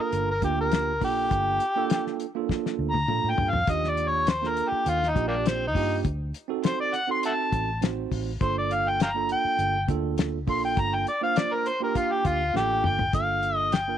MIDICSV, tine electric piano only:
0, 0, Header, 1, 2, 480
1, 0, Start_track
1, 0, Key_signature, -2, "minor"
1, 0, Tempo, 591133
1, 1067, Time_signature, 4, 2, 24, 8
1, 11351, End_track
2, 0, Start_track
2, 0, Title_t, "Tine electric piano"
2, 0, Program_c, 0, 4
2, 0, Note_on_c, 0, 58, 86
2, 0, Note_on_c, 0, 62, 70
2, 0, Note_on_c, 0, 65, 81
2, 0, Note_on_c, 0, 69, 90
2, 234, Note_off_c, 0, 58, 0
2, 238, Note_off_c, 0, 62, 0
2, 240, Note_off_c, 0, 65, 0
2, 242, Note_off_c, 0, 69, 0
2, 343, Note_on_c, 0, 58, 81
2, 345, Note_on_c, 0, 62, 75
2, 354, Note_on_c, 0, 65, 70
2, 356, Note_on_c, 0, 67, 81
2, 740, Note_off_c, 0, 58, 0
2, 741, Note_off_c, 0, 62, 0
2, 745, Note_off_c, 0, 65, 0
2, 746, Note_off_c, 0, 67, 0
2, 818, Note_on_c, 0, 58, 80
2, 824, Note_on_c, 0, 62, 65
2, 828, Note_on_c, 0, 65, 67
2, 835, Note_on_c, 0, 69, 82
2, 1313, Note_off_c, 0, 58, 0
2, 1315, Note_off_c, 0, 62, 0
2, 1318, Note_off_c, 0, 65, 0
2, 1321, Note_off_c, 0, 69, 0
2, 1426, Note_on_c, 0, 58, 87
2, 1431, Note_on_c, 0, 62, 86
2, 1435, Note_on_c, 0, 65, 79
2, 1441, Note_on_c, 0, 69, 112
2, 1818, Note_off_c, 0, 58, 0
2, 1820, Note_off_c, 0, 62, 0
2, 1822, Note_off_c, 0, 65, 0
2, 1825, Note_off_c, 0, 69, 0
2, 1908, Note_on_c, 0, 58, 89
2, 1912, Note_on_c, 0, 62, 75
2, 1917, Note_on_c, 0, 65, 80
2, 1922, Note_on_c, 0, 69, 93
2, 2400, Note_off_c, 0, 58, 0
2, 2402, Note_off_c, 0, 62, 0
2, 2404, Note_off_c, 0, 65, 0
2, 2407, Note_off_c, 0, 69, 0
2, 2503, Note_on_c, 0, 58, 64
2, 2506, Note_on_c, 0, 62, 59
2, 2512, Note_on_c, 0, 65, 63
2, 2515, Note_on_c, 0, 69, 70
2, 2901, Note_off_c, 0, 58, 0
2, 2902, Note_off_c, 0, 62, 0
2, 2905, Note_off_c, 0, 65, 0
2, 2907, Note_off_c, 0, 69, 0
2, 2982, Note_on_c, 0, 58, 65
2, 2989, Note_on_c, 0, 62, 63
2, 2994, Note_on_c, 0, 65, 58
2, 2995, Note_on_c, 0, 67, 71
2, 3475, Note_off_c, 0, 58, 0
2, 3479, Note_off_c, 0, 62, 0
2, 3481, Note_off_c, 0, 65, 0
2, 3482, Note_off_c, 0, 67, 0
2, 3588, Note_on_c, 0, 58, 72
2, 3592, Note_on_c, 0, 62, 65
2, 3600, Note_on_c, 0, 65, 63
2, 3603, Note_on_c, 0, 69, 73
2, 4080, Note_off_c, 0, 58, 0
2, 4082, Note_off_c, 0, 62, 0
2, 4086, Note_off_c, 0, 65, 0
2, 4087, Note_off_c, 0, 69, 0
2, 4180, Note_on_c, 0, 58, 77
2, 4185, Note_on_c, 0, 62, 64
2, 4192, Note_on_c, 0, 65, 63
2, 4195, Note_on_c, 0, 67, 86
2, 4580, Note_off_c, 0, 58, 0
2, 4582, Note_off_c, 0, 62, 0
2, 4586, Note_off_c, 0, 65, 0
2, 4587, Note_off_c, 0, 67, 0
2, 4664, Note_on_c, 0, 58, 72
2, 4670, Note_on_c, 0, 62, 70
2, 4673, Note_on_c, 0, 65, 67
2, 4679, Note_on_c, 0, 67, 90
2, 4907, Note_off_c, 0, 58, 0
2, 4910, Note_off_c, 0, 62, 0
2, 4911, Note_off_c, 0, 65, 0
2, 4914, Note_off_c, 0, 67, 0
2, 5262, Note_on_c, 0, 60, 77
2, 5271, Note_on_c, 0, 63, 73
2, 5274, Note_on_c, 0, 66, 72
2, 5279, Note_on_c, 0, 69, 88
2, 5656, Note_off_c, 0, 60, 0
2, 5661, Note_off_c, 0, 63, 0
2, 5662, Note_off_c, 0, 66, 0
2, 5664, Note_off_c, 0, 69, 0
2, 5745, Note_on_c, 0, 60, 77
2, 5751, Note_on_c, 0, 63, 69
2, 5754, Note_on_c, 0, 66, 68
2, 5762, Note_on_c, 0, 69, 86
2, 6238, Note_off_c, 0, 60, 0
2, 6241, Note_off_c, 0, 63, 0
2, 6242, Note_off_c, 0, 66, 0
2, 6246, Note_off_c, 0, 69, 0
2, 6343, Note_on_c, 0, 60, 69
2, 6350, Note_on_c, 0, 63, 62
2, 6356, Note_on_c, 0, 66, 64
2, 6360, Note_on_c, 0, 72, 75
2, 6740, Note_off_c, 0, 60, 0
2, 6744, Note_off_c, 0, 63, 0
2, 6747, Note_off_c, 0, 66, 0
2, 6749, Note_off_c, 0, 72, 0
2, 6829, Note_on_c, 0, 58, 66
2, 6831, Note_on_c, 0, 62, 59
2, 6836, Note_on_c, 0, 65, 65
2, 6841, Note_on_c, 0, 69, 81
2, 7318, Note_off_c, 0, 58, 0
2, 7319, Note_off_c, 0, 62, 0
2, 7321, Note_off_c, 0, 65, 0
2, 7324, Note_off_c, 0, 69, 0
2, 7426, Note_on_c, 0, 58, 69
2, 7433, Note_on_c, 0, 62, 74
2, 7439, Note_on_c, 0, 65, 68
2, 7444, Note_on_c, 0, 69, 86
2, 7918, Note_off_c, 0, 58, 0
2, 7921, Note_off_c, 0, 62, 0
2, 7924, Note_off_c, 0, 65, 0
2, 7927, Note_off_c, 0, 69, 0
2, 8023, Note_on_c, 0, 58, 80
2, 8028, Note_on_c, 0, 62, 80
2, 8035, Note_on_c, 0, 65, 80
2, 8039, Note_on_c, 0, 69, 92
2, 8420, Note_off_c, 0, 58, 0
2, 8422, Note_off_c, 0, 62, 0
2, 8426, Note_off_c, 0, 65, 0
2, 8428, Note_off_c, 0, 69, 0
2, 8501, Note_on_c, 0, 58, 81
2, 8504, Note_on_c, 0, 62, 74
2, 8511, Note_on_c, 0, 65, 70
2, 8517, Note_on_c, 0, 69, 87
2, 8993, Note_off_c, 0, 58, 0
2, 8995, Note_off_c, 0, 62, 0
2, 8998, Note_off_c, 0, 65, 0
2, 9001, Note_off_c, 0, 69, 0
2, 9103, Note_on_c, 0, 58, 83
2, 9106, Note_on_c, 0, 62, 72
2, 9112, Note_on_c, 0, 65, 77
2, 9118, Note_on_c, 0, 72, 92
2, 9495, Note_off_c, 0, 58, 0
2, 9496, Note_off_c, 0, 62, 0
2, 9499, Note_off_c, 0, 65, 0
2, 9503, Note_off_c, 0, 72, 0
2, 9584, Note_on_c, 0, 58, 82
2, 9588, Note_on_c, 0, 62, 75
2, 9593, Note_on_c, 0, 65, 64
2, 9599, Note_on_c, 0, 67, 95
2, 10076, Note_off_c, 0, 58, 0
2, 10078, Note_off_c, 0, 62, 0
2, 10080, Note_off_c, 0, 65, 0
2, 10083, Note_off_c, 0, 67, 0
2, 10177, Note_on_c, 0, 58, 69
2, 10180, Note_on_c, 0, 62, 63
2, 10186, Note_on_c, 0, 65, 63
2, 10191, Note_on_c, 0, 69, 83
2, 10576, Note_off_c, 0, 58, 0
2, 10577, Note_off_c, 0, 62, 0
2, 10580, Note_off_c, 0, 65, 0
2, 10583, Note_off_c, 0, 69, 0
2, 10659, Note_on_c, 0, 58, 57
2, 10664, Note_on_c, 0, 62, 63
2, 10670, Note_on_c, 0, 65, 55
2, 10673, Note_on_c, 0, 69, 66
2, 11152, Note_off_c, 0, 58, 0
2, 11154, Note_off_c, 0, 62, 0
2, 11157, Note_off_c, 0, 65, 0
2, 11159, Note_off_c, 0, 69, 0
2, 11265, Note_on_c, 0, 58, 64
2, 11267, Note_on_c, 0, 62, 55
2, 11272, Note_on_c, 0, 65, 60
2, 11278, Note_on_c, 0, 70, 81
2, 11351, Note_off_c, 0, 58, 0
2, 11351, Note_off_c, 0, 62, 0
2, 11351, Note_off_c, 0, 65, 0
2, 11351, Note_off_c, 0, 70, 0
2, 11351, End_track
0, 0, End_of_file